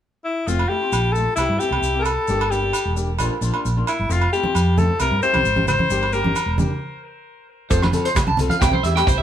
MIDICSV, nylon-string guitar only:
0, 0, Header, 1, 3, 480
1, 0, Start_track
1, 0, Key_signature, -1, "major"
1, 0, Tempo, 452489
1, 501, Time_signature, 4, 2, 24, 8
1, 9786, End_track
2, 0, Start_track
2, 0, Title_t, "Nylon-string guitar"
2, 0, Program_c, 0, 24
2, 498, Note_on_c, 0, 57, 59
2, 511, Note_on_c, 0, 60, 65
2, 648, Note_off_c, 0, 57, 0
2, 654, Note_off_c, 0, 60, 0
2, 729, Note_on_c, 0, 57, 48
2, 753, Note_on_c, 0, 65, 53
2, 854, Note_off_c, 0, 65, 0
2, 860, Note_off_c, 0, 57, 0
2, 867, Note_on_c, 0, 65, 40
2, 889, Note_on_c, 0, 60, 33
2, 1006, Note_off_c, 0, 65, 0
2, 1017, Note_off_c, 0, 60, 0
2, 1230, Note_on_c, 0, 57, 52
2, 1254, Note_on_c, 0, 65, 53
2, 1373, Note_off_c, 0, 57, 0
2, 1386, Note_off_c, 0, 65, 0
2, 1463, Note_on_c, 0, 52, 61
2, 1470, Note_on_c, 0, 64, 65
2, 1474, Note_on_c, 0, 60, 67
2, 1481, Note_on_c, 0, 67, 73
2, 1610, Note_off_c, 0, 52, 0
2, 1614, Note_off_c, 0, 64, 0
2, 1616, Note_off_c, 0, 60, 0
2, 1619, Note_off_c, 0, 67, 0
2, 1694, Note_on_c, 0, 52, 52
2, 1703, Note_on_c, 0, 60, 49
2, 1717, Note_on_c, 0, 67, 58
2, 1718, Note_on_c, 0, 64, 58
2, 1814, Note_off_c, 0, 67, 0
2, 1823, Note_off_c, 0, 52, 0
2, 1825, Note_off_c, 0, 64, 0
2, 1826, Note_on_c, 0, 67, 42
2, 1827, Note_off_c, 0, 60, 0
2, 1838, Note_on_c, 0, 64, 39
2, 1852, Note_on_c, 0, 60, 35
2, 1966, Note_off_c, 0, 67, 0
2, 1971, Note_off_c, 0, 64, 0
2, 1978, Note_off_c, 0, 60, 0
2, 2059, Note_on_c, 0, 67, 44
2, 2069, Note_on_c, 0, 64, 38
2, 2071, Note_on_c, 0, 60, 39
2, 2202, Note_off_c, 0, 67, 0
2, 2207, Note_off_c, 0, 64, 0
2, 2208, Note_off_c, 0, 60, 0
2, 2424, Note_on_c, 0, 62, 62
2, 2425, Note_on_c, 0, 58, 61
2, 2439, Note_on_c, 0, 67, 63
2, 2570, Note_off_c, 0, 62, 0
2, 2571, Note_off_c, 0, 58, 0
2, 2578, Note_off_c, 0, 67, 0
2, 2657, Note_on_c, 0, 58, 48
2, 2668, Note_on_c, 0, 62, 61
2, 2669, Note_on_c, 0, 67, 67
2, 2767, Note_off_c, 0, 67, 0
2, 2779, Note_off_c, 0, 62, 0
2, 2780, Note_on_c, 0, 67, 38
2, 2784, Note_off_c, 0, 58, 0
2, 2792, Note_on_c, 0, 62, 35
2, 2922, Note_off_c, 0, 67, 0
2, 2928, Note_off_c, 0, 62, 0
2, 3128, Note_on_c, 0, 58, 48
2, 3139, Note_on_c, 0, 62, 46
2, 3153, Note_on_c, 0, 67, 60
2, 3283, Note_off_c, 0, 58, 0
2, 3288, Note_off_c, 0, 62, 0
2, 3295, Note_off_c, 0, 67, 0
2, 3379, Note_on_c, 0, 53, 67
2, 3389, Note_on_c, 0, 58, 60
2, 3391, Note_on_c, 0, 62, 79
2, 3393, Note_on_c, 0, 65, 79
2, 3528, Note_off_c, 0, 53, 0
2, 3533, Note_off_c, 0, 58, 0
2, 3534, Note_off_c, 0, 62, 0
2, 3535, Note_off_c, 0, 65, 0
2, 3616, Note_on_c, 0, 53, 59
2, 3627, Note_on_c, 0, 58, 55
2, 3629, Note_on_c, 0, 62, 61
2, 3633, Note_on_c, 0, 65, 64
2, 3737, Note_off_c, 0, 65, 0
2, 3744, Note_off_c, 0, 53, 0
2, 3746, Note_off_c, 0, 62, 0
2, 3750, Note_off_c, 0, 58, 0
2, 3750, Note_on_c, 0, 65, 51
2, 3759, Note_on_c, 0, 62, 47
2, 3767, Note_on_c, 0, 58, 39
2, 3888, Note_off_c, 0, 65, 0
2, 3892, Note_off_c, 0, 62, 0
2, 3896, Note_off_c, 0, 58, 0
2, 3997, Note_on_c, 0, 65, 42
2, 4001, Note_on_c, 0, 62, 38
2, 4014, Note_on_c, 0, 58, 35
2, 4132, Note_off_c, 0, 65, 0
2, 4133, Note_off_c, 0, 62, 0
2, 4140, Note_off_c, 0, 58, 0
2, 4336, Note_on_c, 0, 57, 63
2, 4339, Note_on_c, 0, 60, 67
2, 4344, Note_on_c, 0, 65, 66
2, 4487, Note_off_c, 0, 57, 0
2, 4489, Note_off_c, 0, 60, 0
2, 4491, Note_off_c, 0, 65, 0
2, 4578, Note_on_c, 0, 57, 52
2, 4600, Note_on_c, 0, 60, 57
2, 4607, Note_on_c, 0, 65, 53
2, 4693, Note_off_c, 0, 65, 0
2, 4705, Note_off_c, 0, 57, 0
2, 4706, Note_on_c, 0, 65, 39
2, 4716, Note_off_c, 0, 60, 0
2, 4731, Note_on_c, 0, 60, 34
2, 4846, Note_off_c, 0, 65, 0
2, 4859, Note_off_c, 0, 60, 0
2, 5054, Note_on_c, 0, 57, 54
2, 5070, Note_on_c, 0, 60, 48
2, 5075, Note_on_c, 0, 65, 60
2, 5207, Note_off_c, 0, 57, 0
2, 5215, Note_off_c, 0, 60, 0
2, 5217, Note_off_c, 0, 65, 0
2, 5301, Note_on_c, 0, 52, 54
2, 5305, Note_on_c, 0, 64, 67
2, 5308, Note_on_c, 0, 60, 60
2, 5314, Note_on_c, 0, 67, 68
2, 5450, Note_off_c, 0, 52, 0
2, 5452, Note_off_c, 0, 64, 0
2, 5454, Note_off_c, 0, 60, 0
2, 5457, Note_off_c, 0, 67, 0
2, 5533, Note_on_c, 0, 52, 57
2, 5548, Note_on_c, 0, 60, 53
2, 5550, Note_on_c, 0, 64, 55
2, 5551, Note_on_c, 0, 67, 56
2, 5643, Note_off_c, 0, 67, 0
2, 5654, Note_off_c, 0, 64, 0
2, 5655, Note_on_c, 0, 67, 51
2, 5664, Note_off_c, 0, 52, 0
2, 5667, Note_on_c, 0, 64, 38
2, 5668, Note_off_c, 0, 60, 0
2, 5681, Note_on_c, 0, 60, 33
2, 5802, Note_off_c, 0, 67, 0
2, 5808, Note_off_c, 0, 64, 0
2, 5815, Note_off_c, 0, 60, 0
2, 5899, Note_on_c, 0, 67, 51
2, 5911, Note_on_c, 0, 64, 39
2, 6044, Note_off_c, 0, 67, 0
2, 6050, Note_off_c, 0, 64, 0
2, 6259, Note_on_c, 0, 58, 63
2, 6260, Note_on_c, 0, 62, 66
2, 6271, Note_on_c, 0, 67, 62
2, 6410, Note_off_c, 0, 58, 0
2, 6411, Note_off_c, 0, 62, 0
2, 6416, Note_off_c, 0, 67, 0
2, 6493, Note_on_c, 0, 58, 54
2, 6502, Note_on_c, 0, 62, 58
2, 6517, Note_on_c, 0, 67, 54
2, 6596, Note_off_c, 0, 67, 0
2, 6609, Note_on_c, 0, 67, 51
2, 6617, Note_off_c, 0, 62, 0
2, 6624, Note_off_c, 0, 58, 0
2, 6629, Note_on_c, 0, 62, 37
2, 6759, Note_off_c, 0, 67, 0
2, 6769, Note_off_c, 0, 62, 0
2, 6970, Note_on_c, 0, 58, 51
2, 6984, Note_on_c, 0, 62, 58
2, 6995, Note_on_c, 0, 67, 62
2, 7126, Note_off_c, 0, 58, 0
2, 7133, Note_off_c, 0, 62, 0
2, 7138, Note_off_c, 0, 67, 0
2, 8164, Note_on_c, 0, 53, 76
2, 8171, Note_on_c, 0, 60, 73
2, 8174, Note_on_c, 0, 65, 76
2, 8175, Note_on_c, 0, 69, 84
2, 8323, Note_off_c, 0, 53, 0
2, 8327, Note_off_c, 0, 60, 0
2, 8328, Note_off_c, 0, 65, 0
2, 8328, Note_off_c, 0, 69, 0
2, 8398, Note_on_c, 0, 53, 66
2, 8408, Note_on_c, 0, 60, 64
2, 8414, Note_on_c, 0, 65, 63
2, 8421, Note_on_c, 0, 69, 79
2, 8560, Note_off_c, 0, 53, 0
2, 8565, Note_off_c, 0, 60, 0
2, 8568, Note_off_c, 0, 65, 0
2, 8571, Note_off_c, 0, 69, 0
2, 8891, Note_on_c, 0, 53, 57
2, 8901, Note_on_c, 0, 60, 67
2, 8907, Note_on_c, 0, 65, 60
2, 8914, Note_on_c, 0, 69, 66
2, 9046, Note_off_c, 0, 53, 0
2, 9051, Note_off_c, 0, 60, 0
2, 9054, Note_off_c, 0, 65, 0
2, 9058, Note_off_c, 0, 69, 0
2, 9120, Note_on_c, 0, 55, 77
2, 9128, Note_on_c, 0, 60, 80
2, 9129, Note_on_c, 0, 64, 72
2, 9281, Note_off_c, 0, 55, 0
2, 9285, Note_off_c, 0, 60, 0
2, 9285, Note_off_c, 0, 64, 0
2, 9373, Note_on_c, 0, 55, 60
2, 9380, Note_on_c, 0, 60, 65
2, 9391, Note_on_c, 0, 64, 64
2, 9394, Note_on_c, 0, 67, 69
2, 9489, Note_off_c, 0, 67, 0
2, 9502, Note_on_c, 0, 67, 52
2, 9504, Note_off_c, 0, 55, 0
2, 9505, Note_off_c, 0, 64, 0
2, 9508, Note_off_c, 0, 60, 0
2, 9518, Note_on_c, 0, 64, 48
2, 9524, Note_on_c, 0, 60, 39
2, 9645, Note_off_c, 0, 67, 0
2, 9653, Note_off_c, 0, 64, 0
2, 9656, Note_off_c, 0, 60, 0
2, 9746, Note_on_c, 0, 67, 50
2, 9786, Note_off_c, 0, 67, 0
2, 9786, End_track
3, 0, Start_track
3, 0, Title_t, "Muted nylon-string guitar strokes"
3, 523, Note_on_c, 9, 29, 64
3, 629, Note_off_c, 9, 29, 0
3, 746, Note_on_c, 9, 29, 60
3, 852, Note_off_c, 9, 29, 0
3, 5918, Note_on_c, 9, 29, 37
3, 6024, Note_off_c, 9, 29, 0
3, 9133, Note_on_c, 9, 29, 81
3, 9239, Note_off_c, 9, 29, 0
3, 9786, End_track
0, 0, End_of_file